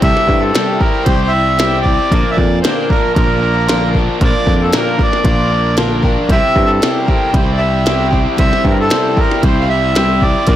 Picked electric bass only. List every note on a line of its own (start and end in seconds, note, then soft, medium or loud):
0.02 0.14 C2 medium
0.28 0.51 G2 medium
1.06 1.98 C2 medium
2.11 2.23 A#1 medium
2.37 2.60 F2 medium
3.16 4.07 A#1 medium
4.21 4.32 A#1 loud
4.47 4.70 F2 medium
5.24 6.16 A#1 medium
6.29 6.41 C2 medium
6.56 6.79 G2 medium
7.34 8.25 C2 medium
8.39 8.51 C2 medium
8.64 8.88 G2 medium
9.43 10.35 C2 medium
10.47 10.56 A#1 medium